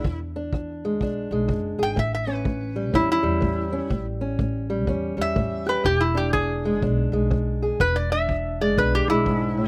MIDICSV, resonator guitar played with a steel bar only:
0, 0, Header, 1, 2, 480
1, 0, Start_track
1, 0, Tempo, 484653
1, 46, Time_signature, 4, 2, 24, 8
1, 9586, End_track
2, 0, Start_track
2, 0, Title_t, "Resonator guitar played with a steel bar"
2, 0, Program_c, 0, 25
2, 0, Note_on_c, 0, 64, 77
2, 183, Note_off_c, 0, 64, 0
2, 1810, Note_on_c, 0, 79, 78
2, 1959, Note_off_c, 0, 79, 0
2, 1970, Note_on_c, 0, 76, 67
2, 2113, Note_off_c, 0, 76, 0
2, 2125, Note_on_c, 0, 76, 60
2, 2302, Note_off_c, 0, 76, 0
2, 2302, Note_on_c, 0, 71, 62
2, 2909, Note_off_c, 0, 71, 0
2, 2922, Note_on_c, 0, 64, 69
2, 3074, Note_off_c, 0, 64, 0
2, 3086, Note_on_c, 0, 64, 83
2, 4011, Note_off_c, 0, 64, 0
2, 5164, Note_on_c, 0, 76, 87
2, 5626, Note_off_c, 0, 76, 0
2, 5634, Note_on_c, 0, 71, 75
2, 5791, Note_off_c, 0, 71, 0
2, 5799, Note_on_c, 0, 67, 83
2, 5948, Note_on_c, 0, 64, 66
2, 5953, Note_off_c, 0, 67, 0
2, 6107, Note_off_c, 0, 64, 0
2, 6114, Note_on_c, 0, 67, 73
2, 6265, Note_off_c, 0, 67, 0
2, 6269, Note_on_c, 0, 68, 82
2, 6740, Note_off_c, 0, 68, 0
2, 7732, Note_on_c, 0, 71, 80
2, 7882, Note_on_c, 0, 74, 69
2, 7883, Note_off_c, 0, 71, 0
2, 8037, Note_off_c, 0, 74, 0
2, 8041, Note_on_c, 0, 76, 78
2, 8509, Note_off_c, 0, 76, 0
2, 8532, Note_on_c, 0, 74, 71
2, 8684, Note_off_c, 0, 74, 0
2, 8699, Note_on_c, 0, 71, 74
2, 8848, Note_off_c, 0, 71, 0
2, 8863, Note_on_c, 0, 67, 80
2, 9006, Note_off_c, 0, 67, 0
2, 9010, Note_on_c, 0, 64, 78
2, 9586, Note_off_c, 0, 64, 0
2, 9586, End_track
0, 0, End_of_file